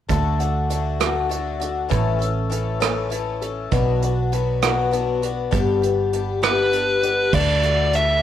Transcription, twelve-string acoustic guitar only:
0.09 0.39 D3 medium
0.09 0.40 A3 medium
0.09 0.39 D4 medium
0.09 0.38 F#4 medium
0.39 0.69 A3 soft
0.39 0.69 D4 soft
0.39 0.70 F#4 soft
0.70 1.00 D3 soft
0.70 0.99 A3 medium
0.70 0.99 D4 medium
0.70 0.99 F#4 medium
1.00 1.28 D3 medium
1.00 1.28 A3 soft
1.00 1.29 D4 medium
1.00 1.30 F#4 medium
1.29 1.60 D3 soft
1.29 1.60 A3 soft
1.29 1.60 D4 soft
1.29 1.58 F#4 medium
1.60 1.89 A3 soft
1.60 1.89 D4 soft
1.60 1.90 F#4 soft
1.89 2.20 A2 medium
1.89 2.20 E3 medium
1.89 2.19 A3 medium
1.89 2.19 C#4 medium
1.89 2.17 A4 medium
2.19 2.49 A3 soft
2.19 2.50 C#4 soft
2.19 2.50 A4 soft
2.50 2.80 E3 medium
2.50 2.80 A3 soft
2.50 2.80 C#4 medium
2.50 2.79 A4 medium
2.80 3.12 A2 medium
2.80 3.09 E3 medium
2.80 3.09 A3 medium
2.80 3.10 C#4 medium
2.80 3.11 A4 medium
3.10 3.41 E3 soft
3.10 3.41 A3 medium
3.10 3.41 C#4 medium
3.10 3.40 A4 medium
3.42 3.71 A3 soft
3.42 3.72 C#4 soft
3.42 3.72 A4 soft
3.71 4.02 B2 medium
3.71 4.02 F#3 medium
3.71 4.02 B3 medium
3.71 4.02 D4 medium
3.71 4.01 F#4 medium
4.02 4.32 B3 soft
4.02 4.33 D4 soft
4.02 4.32 F#4 soft
4.32 4.62 F#3 medium
4.32 4.62 B3 medium
4.32 4.61 D4 medium
4.32 4.61 F#4 medium
4.62 4.93 B2 medium
4.62 4.90 F#3 medium
4.62 4.91 B3 medium
4.62 4.91 D4 medium
4.62 4.92 F#4 medium
4.91 5.22 F#3 medium
4.91 5.23 B3 medium
4.91 5.23 D4 medium
4.91 5.21 F#4 medium
5.22 5.50 B3 soft
5.22 5.51 D4 soft
5.22 5.52 F#4 soft
5.51 5.82 G2 medium
5.51 5.82 D3 medium
5.51 5.82 G3 medium
5.51 5.82 B3 medium
5.51 5.82 D4 medium
5.51 5.81 G4 medium
5.82 6.12 G3 soft
5.82 6.12 B3 soft
5.82 6.13 D4 soft
5.82 6.13 G4 soft
6.13 6.42 G3 soft
6.13 6.42 B3 soft
6.13 6.42 D4 medium
6.13 6.41 G4 medium
6.42 6.74 G2 soft
6.42 6.73 D3 medium
6.42 6.71 G3 medium
6.42 6.71 B3 medium
6.42 6.73 D4 medium
6.42 6.73 G4 medium
6.72 7.03 G3 medium
6.72 7.02 B3 soft
6.72 7.02 D4 medium
6.72 7.01 G4 medium
7.02 7.33 G3 soft
7.02 7.33 B3 soft
7.02 7.33 D4 soft
7.02 7.33 G4 soft
7.33 7.63 D3 medium
7.33 7.63 A3 medium
7.33 7.62 D4 medium
7.33 7.61 F#4 medium
7.62 7.93 A3 soft
7.62 7.93 D4 soft
7.62 7.93 F#4 soft
7.93 8.22 D3 soft
7.93 8.22 A3 soft
7.93 8.22 D4 medium
7.93 8.22 F#4 medium

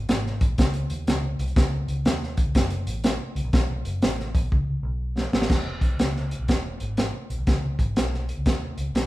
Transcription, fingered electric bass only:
0.08 0.43 G#1 loud
0.49 0.57 B1 medium
0.58 0.86 C#2 loud
0.90 1.05 D#2 medium
1.07 1.34 C#2 medium
1.39 1.54 C2 loud
1.56 1.84 C#2 loud
1.88 2.03 C#2 loud
2.06 2.41 D#2 medium
2.46 2.54 C#2 medium
2.55 2.82 F#1 medium
2.86 3.15 A1 medium
3.35 3.43 C#2 loud
3.45 3.52 A#1 medium
3.53 3.80 B1 loud
3.85 4.00 F#1 medium
4.02 4.37 A1 medium
4.43 4.51 B1 medium
4.52 4.79 C#2 medium
4.83 5.25 B1 medium
5.33 5.48 A1 medium
5.50 5.77 E1 loud
5.81 5.96 B1 medium
6.00 6.34 C#2 medium
6.39 6.47 B1 medium
6.49 6.76 E1 medium
6.81 7.09 G#1 medium
7.30 7.37 B1 medium
7.38 7.46 C2 medium
7.47 7.74 C#2 loud
7.79 7.94 G#1 medium
7.96 8.31 B1 medium
8.37 8.45 C#2 medium
8.46 8.73 D#2 medium
8.78 8.92 C#2 medium
8.94 9.06 B1 medium

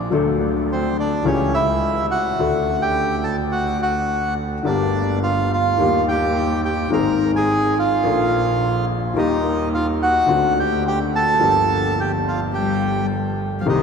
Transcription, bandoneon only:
0.72 0.97 C4 medium
0.72 0.97 C5 medium
1.00 1.25 D4 soft
1.00 1.27 D5 medium
1.27 1.52 C#4 soft
1.27 1.55 C#5 medium
1.54 2.07 E4 medium
1.54 2.06 E5 medium
2.11 2.77 F#4 medium
2.11 2.83 F#5 medium
2.82 3.20 G4 medium
2.82 3.25 G5 medium
3.23 3.36 A4 medium
3.23 3.36 A5 medium
3.51 3.77 F#4 medium
3.51 3.81 F#5 medium
3.82 4.34 F#4 soft
3.82 4.34 F#5 medium
4.66 5.20 D4 soft
4.66 5.19 D5 medium
5.23 5.49 F4 soft
5.23 5.52 F5 medium
5.53 6.05 F4 soft
5.53 6.05 F5 medium
6.08 6.61 G4 medium
6.08 6.60 G5 medium
6.65 6.91 G4 soft
6.65 6.91 G5 medium
6.93 7.32 A#4 medium
6.93 7.32 A#5 medium
7.36 7.75 G#4 medium
7.36 7.78 G#5 medium
7.79 8.85 F4 medium
7.79 8.86 F5 medium
9.18 9.69 D#4 medium
9.18 9.69 D#5 medium
9.75 9.87 F4 medium
9.75 9.86 F5 medium
10.03 10.54 F#4 medium
10.03 10.59 F#5 medium
10.59 10.84 G4 medium
10.59 10.84 G5 medium
10.88 10.99 G4 medium
10.88 10.99 G5 medium
11.16 11.94 A4 medium
11.16 12.00 A5 medium
12.00 12.12 G4 medium
12.00 12.12 G5 medium
12.27 12.39 F4 soft
12.27 12.40 F5 medium
12.53 13.06 G4 medium
12.53 13.07 G5 medium
13.61 13.67 F5 soft
13.69 13.83 D#4 soft
13.69 13.83 D#5 medium

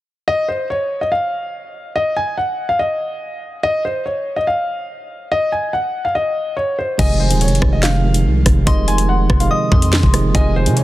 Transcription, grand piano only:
0.28 0.46 D#5 loud
0.48 0.67 C5 medium
0.70 0.99 C#5 medium
1.01 1.11 D#5 medium
1.12 1.92 F5 medium
1.96 2.14 D#5 loud
2.16 2.35 G#5 medium
2.38 2.67 F#5 medium
2.69 2.78 F5 medium
2.79 3.59 D#5 medium
3.63 3.82 D#5 loud
3.85 4.03 C5 medium
4.06 4.35 C#5 medium
4.36 4.46 D#5 medium
4.47 5.27 F5 medium
5.32 5.50 D#5 loud
5.52 5.71 G#5 medium
5.73 6.03 F#5 medium
6.05 6.14 F5 medium
6.15 6.55 D#5 medium
6.57 6.75 C#5 medium
6.79 6.97 C5 medium
6.99 7.18 D#5 loud
7.20 7.39 C5 medium
7.42 7.71 C#5 medium
7.73 7.82 D#5 medium
7.83 8.63 F5 medium
8.67 8.86 D#5 loud
8.88 9.06 G#5 medium
9.09 9.38 F#5 medium
9.40 9.50 F5 medium
9.51 10.31 D#5 medium
10.35 10.53 D#5 loud
10.56 10.75 C5 medium
10.77 10.84 C#5 medium

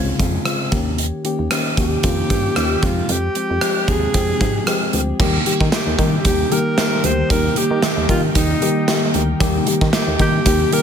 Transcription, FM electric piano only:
0.00 0.19 C#3 medium
0.00 0.19 G#3 medium
0.00 0.20 C4 medium
0.00 0.20 F4 medium
0.19 0.38 C#3 medium
0.19 0.38 G#3 medium
0.19 0.38 C4 medium
0.19 0.38 F4 medium
0.45 0.64 C#3 medium
0.45 0.64 G#3 medium
0.45 0.64 C4 medium
0.45 0.64 F4 medium
0.71 1.15 D#3 medium
0.71 1.15 A#3 medium
0.71 1.15 C#4 medium
0.71 1.16 G4 medium
1.24 1.43 D#3 medium
1.24 1.43 A#3 medium
1.24 1.43 C#4 medium
1.24 1.43 G4 medium
1.51 1.69 D#3 medium
1.51 1.69 A#3 medium
1.51 1.70 C#4 medium
1.51 1.70 G4 medium
1.77 1.96 D#3 medium
1.77 1.96 A#3 medium
1.77 1.96 C#4 medium
1.77 1.96 G4 medium
2.03 2.22 D#3 medium
2.03 2.22 A#3 medium
2.03 2.22 C#4 medium
2.03 2.22 F4 medium
2.29 2.48 D#3 medium
2.29 2.48 A#3 medium
2.29 2.48 C#4 medium
2.29 2.49 G4 medium
2.56 2.75 D#3 medium
2.56 2.75 A#3 medium
2.56 2.75 C#4 medium
2.56 2.75 G4 medium
2.82 3.26 F3 medium
2.82 3.26 G#3 medium
2.82 3.26 C4 medium
2.82 3.26 G4 medium
3.36 3.54 F3 medium
3.36 3.54 G#3 medium
3.36 3.54 C4 medium
3.36 3.54 G4 medium
3.62 3.80 F3 medium
3.62 3.80 G#3 medium
3.62 3.80 C4 medium
3.62 3.81 G4 medium
3.88 4.06 F3 medium
3.88 4.07 G#3 medium
3.88 4.07 C4 medium
3.88 4.07 G4 medium
4.14 4.33 F3 medium
4.14 4.33 G#3 medium
4.14 4.33 C4 medium
4.14 4.33 G4 medium
4.40 4.59 F3 medium
4.40 4.59 G#3 medium
4.40 4.59 C4 medium
4.40 4.59 G4 medium
4.67 4.85 F3 medium
4.67 4.85 G#3 medium
4.67 4.86 C4 medium
4.67 4.86 G4 medium
4.93 5.12 F3 medium
4.93 5.12 G#3 medium
4.93 5.12 C4 medium
4.93 5.12 G4 medium
5.19 5.38 D#3 loud
5.19 5.38 G3 loud
5.19 5.38 A#3 loud
5.19 5.38 G4 loud
5.45 5.64 D#3 medium
5.45 5.64 G3 medium
5.45 5.64 A#3 medium
5.45 5.65 G4 medium
5.72 5.91 D#3 medium
5.72 5.91 G3 medium
5.72 5.91 A#3 medium
5.72 5.91 G4 medium
5.99 6.17 D#3 medium
5.99 6.17 G3 medium
5.99 6.17 A#3 medium
5.99 6.18 G4 medium
6.25 6.43 D#3 medium
6.25 6.43 G3 medium
6.25 6.44 A#3 medium
6.25 6.44 G4 medium
6.51 6.69 D#3 medium
6.51 6.70 G3 medium
6.51 6.70 A#3 medium
6.51 6.70 G4 loud
6.78 6.96 D#3 medium
6.78 6.96 G3 medium
6.78 6.96 A#3 medium
6.78 6.97 G4 loud
7.04 7.22 D#3 medium
7.04 7.22 G3 medium
7.04 7.22 A#3 medium
7.04 7.23 G4 medium
7.30 7.49 D#3 medium
7.30 7.49 G3 medium
7.30 7.49 A#3 medium
7.30 7.49 G4 loud
7.56 7.74 D#3 medium
7.56 7.75 G3 medium
7.56 7.75 A#3 medium
7.56 7.75 G4 medium
7.83 8.01 D#3 medium
7.83 8.01 G3 medium
7.83 8.02 A#3 medium
7.83 8.02 G4 medium
8.09 8.27 D#3 medium
8.09 8.28 G3 medium
8.09 8.28 A#3 medium
8.09 8.28 G4 medium
8.35 8.53 D#3 medium
8.35 8.54 G3 medium
8.35 8.54 A#3 medium
8.35 8.54 G4 medium
8.61 8.80 D#3 loud
8.61 8.80 G3 medium
8.61 8.80 A#3 medium
8.61 8.80 G4 loud
8.88 9.06 D#3 medium
8.88 9.06 G3 medium
8.88 9.07 A#3 medium
8.88 9.07 G4 loud
9.14 9.33 D#3 medium
9.14 9.33 G3 medium
9.14 9.33 A#3 medium
9.14 9.33 G4 loud
9.40 9.59 D#3 loud
9.40 9.59 G3 loud
9.40 9.59 A#3 loud
9.40 9.59 G4 loud
9.67 9.85 D#3 medium
9.67 9.85 G3 medium
9.67 9.86 A#3 medium
9.67 9.86 G4 medium
9.93 10.12 D#3 medium
9.93 10.12 G3 medium
9.93 10.12 A#3 medium
9.93 10.12 G4 medium
10.20 10.38 D#3 medium
10.20 10.38 G3 medium
10.20 10.38 A#3 medium
10.20 10.39 G4 medium
10.46 10.64 D#3 medium
10.46 10.64 G3 medium
10.46 10.65 A#3 medium
10.46 10.65 G4 medium
10.72 10.82 D#3 loud
10.72 10.82 G3 medium
10.72 10.82 A#3 medium
10.72 10.82 G4 loud

